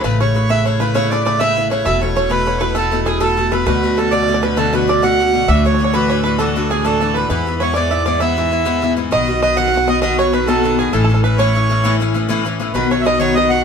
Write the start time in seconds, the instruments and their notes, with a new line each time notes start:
0.01 upright bass A1, bouzouki C#3 A3 E4 B4, accordion B4, five-string banjo B4 C#5
0.20 bouzouki C#3 A3 E4 B4, five-string banjo C#5, accordion C#5
0.34 bouzouki C#3 A3 E4 B4
0.49 bouzouki C#3 A3 E4 B4, accordion E5, five-string banjo E5
0.65 bouzouki C#3 A3 E4 B4, accordion C#5, five-string banjo C#5
0.80 bouzouki C#3 A3 E4 B4, five-string banjo B4, accordion B4
0.94 bouzouki C#3 A3 E4 B4, accordion C#5, five-string banjo C#5
1.10 bouzouki C#3 A3 E4 B4, accordion D5, five-string banjo D5
1.24 bouzouki C#3 A3 E4 B4, accordion D5, five-string banjo D5
1.39 bouzouki C#3 A3 E4 B4, accordion E5, five-string banjo E5
1.56 bouzouki C#3 A3 E4 B4
1.70 bouzouki C#3 A3 E4 B4, accordion C#5, five-string banjo C#5
1.85 upright bass E1, bouzouki B2 A3 E4 A4, accordion E5, five-string banjo E5
2.01 bouzouki B2 A3 E4 A4, accordion C#5, five-string banjo C#5
2.16 bouzouki B2 A3 E4 A4, five-string banjo C#5
2.30 bouzouki B2 A3 E4 A4, accordion B4, five-string banjo B4
2.46 bouzouki B2 A3 E4 A4, five-string banjo C#5
2.58 bouzouki B2 A3 E4 A4, five-string banjo B4, accordion B4 C#5
2.75 bouzouki B2 A3 E4 A4, five-string banjo A4, accordion A4
2.91 bouzouki B2 A3 E4 A4
3.06 bouzouki B2 A3 E4 A4, five-string banjo G#4, accordion G#4
3.20 bouzouki B2 A3 E4 A4, five-string banjo A4, accordion A4
3.37 bouzouki B2 A3 E4 A4
3.51 bouzouki B2 A3 E4 A4, five-string banjo B4, accordion B4
3.66 upright bass D2, bouzouki B2 D3 A3 F#4, five-string banjo B4, accordion B4
3.83 bouzouki B2 D3 A3 F#4
3.97 bouzouki B2 D3 A3 F#4, accordion A4, five-string banjo A4
4.11 bouzouki B2 D3 A3 F#4, accordion D5, five-string banjo D5
4.23 five-string banjo D5
4.28 bouzouki B2 D3 A3 F#4
4.34 five-string banjo D5
4.42 bouzouki B2 D3 A3 F#4, accordion B4, five-string banjo B4
4.57 bouzouki B2 D3 A3 F#4, five-string banjo A4, accordion A4
4.73 bouzouki B2 D3 A3 F#4, five-string banjo B4, accordion B4
4.87 bouzouki B2 D3 A3 F#4, accordion D5, five-string banjo D5
5.03 bouzouki B2 D3 A3 F#4, five-string banjo F#5, accordion F#5
5.19 bouzouki B2 D3 A3 F#4
5.33 bouzouki B2 D3 A3 F#4
5.48 upright bass D2, bouzouki A2 E3 D4 F#4, accordion E5, five-string banjo E5
5.65 bouzouki A2 E3 D4 F#4, accordion C#5, five-string banjo C#5
5.74 five-string banjo C#5
5.79 bouzouki A2 E3 D4 F#4
5.84 five-string banjo C#5
5.94 bouzouki A2 E3 D4 F#4, five-string banjo B4, accordion B4
6.09 bouzouki A2 E3 D4 F#4, five-string banjo C#5
6.24 bouzouki A2 E3 D4 F#4, five-string banjo B4, accordion B4
6.39 bouzouki A2 E3 D4 F#4, five-string banjo A4, accordion A4
6.56 bouzouki A2 E3 D4 F#4
6.70 bouzouki A2 E3 D4 F#4, accordion G#4, five-string banjo G#4
6.84 bouzouki A2 E3 D4 F#4, five-string banjo A4, accordion A4
7.00 bouzouki A2 E3 D4 F#4, five-string banjo A4
7.14 bouzouki A2 E3 D4 F#4, five-string banjo B4, accordion B4
7.30 upright bass E2, bouzouki G#2 E3 B3 E4, five-string banjo B4, accordion B4
7.46 bouzouki G#2 E3 B3 E4
7.60 bouzouki G#2 E3 B3 E4, five-string banjo C#5, accordion C#5
7.74 bouzouki G#2 E3 B3 E4, five-string banjo D5, accordion D5
7.91 bouzouki G#2 E3 B3 E4, five-string banjo E5
8.06 bouzouki G#2 E3 B3 E4, five-string banjo D5, accordion D5
8.20 bouzouki G#2 E3 B3 E4, five-string banjo E5, accordion E5
8.37 bouzouki G#2 E3 B3 E4
8.51 bouzouki G#2 E3 B3 E4
8.65 bouzouki G#2 E3 B3 E4
8.82 bouzouki G#2 E3 B3 E4
8.96 bouzouki G#2 E3 B3 E4
9.11 upright bass B1, bouzouki B2 D#3 B3 F#4, five-string banjo D#5, accordion D#5
9.27 bouzouki B2 D#3 B3 F#4
9.42 bouzouki B2 D#3 B3 F#4, five-string banjo D#5, accordion D#5
9.56 bouzouki B2 D#3 B3 F#4, accordion F#5, five-string banjo F#5
9.68 five-string banjo F#5
9.73 bouzouki B2 D#3 B3 F#4
9.77 five-string banjo F#5
9.87 bouzouki B2 D#3 B3 F#4, five-string banjo D#5, accordion D#5
10.01 bouzouki B2 D#3 B3 F#4, accordion D#5, five-string banjo D#5
10.18 bouzouki B2 D#3 B3 F#4, accordion C#5, five-string banjo C#5
10.33 bouzouki B2 D#3 B3 F#4, accordion B4, five-string banjo B4
10.47 bouzouki B2 D#3 B3 F#4, accordion A4, five-string banjo A4
10.64 bouzouki B2 D#3 B3 F#4
10.78 bouzouki B2 D#3 B3 F#4, accordion G#4, five-string banjo G#4
10.93 upright bass A1, bouzouki A2 E3 C#4 E4, accordion A4, five-string banjo A4
11.04 five-string banjo A4
11.09 bouzouki A2 E3 C#4 E4
11.14 five-string banjo A4
11.24 bouzouki A2 E3 C#4 E4, accordion B4, five-string banjo B4
11.37 bouzouki A2 E3 C#4 E4, accordion C#5, five-string banjo C#5
11.55 bouzouki A2 E3 C#4 E4
11.69 bouzouki A2 E3 C#4 E4
11.84 bouzouki A2 E3 C#4 E4
12.00 bouzouki A2 E3 C#4 E4
12.14 bouzouki A2 E3 C#4 E4
12.29 bouzouki A2 E3 C#4 E4
12.45 bouzouki A2 E3 C#4 E4
12.60 bouzouki A2 E3 C#4 E4
12.74 upright bass B1, bouzouki B2 D#3 B3 F#4, accordion B4, five-string banjo B4
12.91 bouzouki B2 D#3 B3 F#4, accordion C#5, five-string banjo C#5
13.01 bouzouki B2, accordion E5
13.05 bouzouki D#3 B3 F#4, accordion D#5, five-string banjo D#5
13.19 bouzouki B2 D#3 B3 F#4, accordion C#5, five-string banjo C#5
13.35 bouzouki B2 D#3 B3 F#4, accordion D#5, five-string banjo D#5
13.50 bouzouki B2 D#3 B3 F#4, accordion F#5